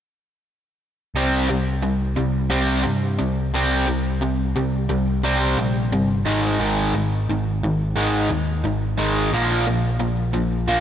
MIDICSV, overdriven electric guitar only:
0, 0, Header, 1, 2, 480
1, 0, Start_track
1, 0, Key_signature, -3, "minor"
1, 0, Tempo, 681044
1, 818, Time_signature, 4, 2, 24, 8
1, 7613, End_track
2, 0, Start_track
2, 0, Title_t, "Overdriven electric guitar"
2, 0, Program_c, 0, 29
2, 819, Note_on_c, 0, 48, 81
2, 822, Note_on_c, 0, 55, 86
2, 824, Note_on_c, 0, 60, 93
2, 1044, Note_off_c, 0, 48, 0
2, 1046, Note_off_c, 0, 55, 0
2, 1047, Note_off_c, 0, 60, 0
2, 1055, Note_on_c, 0, 48, 71
2, 1060, Note_on_c, 0, 55, 77
2, 1273, Note_off_c, 0, 48, 0
2, 1276, Note_off_c, 0, 55, 0
2, 1290, Note_on_c, 0, 55, 77
2, 1291, Note_on_c, 0, 48, 69
2, 1511, Note_off_c, 0, 48, 0
2, 1511, Note_off_c, 0, 55, 0
2, 1526, Note_on_c, 0, 48, 64
2, 1533, Note_on_c, 0, 55, 71
2, 1749, Note_off_c, 0, 48, 0
2, 1753, Note_off_c, 0, 55, 0
2, 1761, Note_on_c, 0, 48, 91
2, 1764, Note_on_c, 0, 55, 86
2, 1769, Note_on_c, 0, 60, 98
2, 1990, Note_off_c, 0, 48, 0
2, 1991, Note_off_c, 0, 55, 0
2, 1998, Note_on_c, 0, 48, 70
2, 2000, Note_off_c, 0, 60, 0
2, 2000, Note_on_c, 0, 55, 73
2, 2225, Note_off_c, 0, 48, 0
2, 2226, Note_off_c, 0, 55, 0
2, 2245, Note_on_c, 0, 48, 73
2, 2247, Note_on_c, 0, 55, 80
2, 2469, Note_off_c, 0, 48, 0
2, 2469, Note_off_c, 0, 55, 0
2, 2493, Note_on_c, 0, 48, 79
2, 2500, Note_on_c, 0, 55, 83
2, 2502, Note_on_c, 0, 60, 94
2, 2719, Note_off_c, 0, 55, 0
2, 2722, Note_off_c, 0, 48, 0
2, 2727, Note_off_c, 0, 60, 0
2, 2727, Note_on_c, 0, 55, 84
2, 2730, Note_on_c, 0, 48, 67
2, 2950, Note_off_c, 0, 55, 0
2, 2951, Note_off_c, 0, 48, 0
2, 2968, Note_on_c, 0, 48, 65
2, 2974, Note_on_c, 0, 55, 79
2, 3190, Note_off_c, 0, 48, 0
2, 3193, Note_off_c, 0, 55, 0
2, 3212, Note_on_c, 0, 48, 70
2, 3214, Note_on_c, 0, 55, 75
2, 3432, Note_off_c, 0, 48, 0
2, 3433, Note_off_c, 0, 55, 0
2, 3447, Note_on_c, 0, 48, 69
2, 3451, Note_on_c, 0, 55, 71
2, 3670, Note_off_c, 0, 48, 0
2, 3671, Note_off_c, 0, 55, 0
2, 3689, Note_on_c, 0, 48, 82
2, 3697, Note_on_c, 0, 55, 86
2, 3699, Note_on_c, 0, 60, 86
2, 3920, Note_off_c, 0, 48, 0
2, 3924, Note_off_c, 0, 55, 0
2, 3925, Note_off_c, 0, 60, 0
2, 3938, Note_on_c, 0, 48, 66
2, 3941, Note_on_c, 0, 55, 76
2, 4155, Note_off_c, 0, 48, 0
2, 4156, Note_off_c, 0, 55, 0
2, 4176, Note_on_c, 0, 48, 79
2, 4178, Note_on_c, 0, 55, 77
2, 4394, Note_off_c, 0, 48, 0
2, 4395, Note_off_c, 0, 55, 0
2, 4409, Note_on_c, 0, 44, 88
2, 4411, Note_on_c, 0, 51, 80
2, 4416, Note_on_c, 0, 56, 93
2, 4640, Note_off_c, 0, 44, 0
2, 4641, Note_off_c, 0, 51, 0
2, 4643, Note_off_c, 0, 56, 0
2, 4649, Note_on_c, 0, 44, 85
2, 4655, Note_on_c, 0, 51, 94
2, 4659, Note_on_c, 0, 56, 87
2, 4880, Note_off_c, 0, 44, 0
2, 4883, Note_off_c, 0, 51, 0
2, 4885, Note_off_c, 0, 56, 0
2, 4899, Note_on_c, 0, 44, 70
2, 4901, Note_on_c, 0, 51, 77
2, 5115, Note_off_c, 0, 44, 0
2, 5116, Note_off_c, 0, 51, 0
2, 5141, Note_on_c, 0, 44, 68
2, 5148, Note_on_c, 0, 51, 84
2, 5356, Note_off_c, 0, 44, 0
2, 5359, Note_off_c, 0, 51, 0
2, 5380, Note_on_c, 0, 44, 66
2, 5387, Note_on_c, 0, 51, 75
2, 5595, Note_off_c, 0, 44, 0
2, 5599, Note_off_c, 0, 51, 0
2, 5609, Note_on_c, 0, 44, 87
2, 5613, Note_on_c, 0, 51, 89
2, 5622, Note_on_c, 0, 56, 97
2, 5839, Note_off_c, 0, 44, 0
2, 5841, Note_off_c, 0, 51, 0
2, 5846, Note_off_c, 0, 56, 0
2, 5852, Note_on_c, 0, 44, 67
2, 5854, Note_on_c, 0, 51, 84
2, 6071, Note_off_c, 0, 44, 0
2, 6072, Note_off_c, 0, 51, 0
2, 6091, Note_on_c, 0, 44, 63
2, 6099, Note_on_c, 0, 51, 77
2, 6310, Note_off_c, 0, 44, 0
2, 6314, Note_off_c, 0, 51, 0
2, 6327, Note_on_c, 0, 44, 84
2, 6330, Note_on_c, 0, 51, 82
2, 6335, Note_on_c, 0, 56, 84
2, 6558, Note_off_c, 0, 44, 0
2, 6559, Note_off_c, 0, 51, 0
2, 6561, Note_off_c, 0, 56, 0
2, 6575, Note_on_c, 0, 46, 76
2, 6581, Note_on_c, 0, 53, 88
2, 6584, Note_on_c, 0, 58, 97
2, 6802, Note_off_c, 0, 46, 0
2, 6805, Note_off_c, 0, 53, 0
2, 6806, Note_off_c, 0, 58, 0
2, 6814, Note_on_c, 0, 46, 70
2, 6817, Note_on_c, 0, 53, 77
2, 7031, Note_off_c, 0, 46, 0
2, 7033, Note_off_c, 0, 53, 0
2, 7044, Note_on_c, 0, 46, 75
2, 7048, Note_on_c, 0, 53, 76
2, 7266, Note_off_c, 0, 46, 0
2, 7268, Note_off_c, 0, 53, 0
2, 7285, Note_on_c, 0, 46, 69
2, 7289, Note_on_c, 0, 53, 73
2, 7506, Note_off_c, 0, 46, 0
2, 7508, Note_off_c, 0, 53, 0
2, 7526, Note_on_c, 0, 46, 79
2, 7529, Note_on_c, 0, 53, 94
2, 7535, Note_on_c, 0, 58, 88
2, 7613, Note_off_c, 0, 46, 0
2, 7613, Note_off_c, 0, 53, 0
2, 7613, Note_off_c, 0, 58, 0
2, 7613, End_track
0, 0, End_of_file